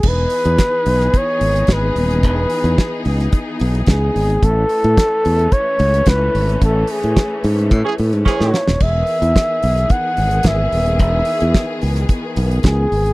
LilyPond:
<<
  \new Staff \with { instrumentName = "Flugelhorn" } { \time 4/4 \key e \major \tempo 4 = 110 b'2 cis''4 b'4 | b'4. r4. gis'4 | a'2 cis''4 b'4 | a'8 gis'4 r4. cis''4 |
e''2 fis''4 e''4 | e''4. r4. gis'4 | }
  \new Staff \with { instrumentName = "Horn section" } { \time 4/4 \key e \major r1 | r1 | r1 | r2 r16 <e cis' gis'>16 r8 <e cis' gis'>8. r16 |
r1 | r1 | }
  \new Staff \with { instrumentName = "String section" } { \time 4/4 \key e \major <e b dis' gis'>1~ | <e b dis' gis'>1 | <e a cis'>1~ | <e a cis'>1 |
<dis e b gis'>1~ | <dis e b gis'>1 | }
  \new Staff \with { instrumentName = "Fingered electric bass" } { \clef bass \time 4/4 \key e \major e,,8 r16 e,16 r8 b,,8 r8 gis,,8 gis,,8 dis,,8 | e,,8 r16 e,16 r8 cis,8 r8 b,,8 cis,8 gis,,8 | a,,8 r16 a,16 r8 e,8 r8 cis,8 cis,8 gis,,8 | a,,8 r16 a,16 r8 gis,8 a,16 r16 a,16 gis,16 r16 a,16 r16 dis,,16 |
e,,8 r16 e,16 r8 b,,8 r8 gis,,8 gis,,8 dis,,8 | e,,8 r16 e,16 r8 cis,8 r8 b,,8 cis,8 gis,,8 | }
  \new DrumStaff \with { instrumentName = "Drums" } \drummode { \time 4/4 <cymc bd>8 hho16 hh16 <hh bd sn>8 hho16 <hh sn>16 <hh bd>8 hho16 hh16 <hh bd sn>8 hho16 hh16 | <hh bd>8 hho16 hh16 <hh bd sn>8 hho16 <hh sn>16 <hh bd>8 hho16 hh16 <hh bd sn>8 hho16 hh16 | <hh bd>8 hho16 hh16 <hh bd sn>8 hho16 hh16 <hh bd>8 hho16 hh16 <hh bd sn>8 hho16 hh16 | <hh bd>8 hho16 hh16 <hh bd sn>8 hho16 hh16 <hh bd>8 hho16 hh16 <bd sn>16 sn16 sn16 sn16 |
<cymc bd>8 hho16 hh16 <hh bd sn>8 hho16 hh16 <hh bd>8 hho16 hh16 <hh bd sn>8 hho16 hh16 | <hh bd>8 hho16 hh16 <hh bd sn>8 hho16 <hh sn>16 <hh bd>8 hho16 hh16 <hh bd sn>8 hho16 hh16 | }
>>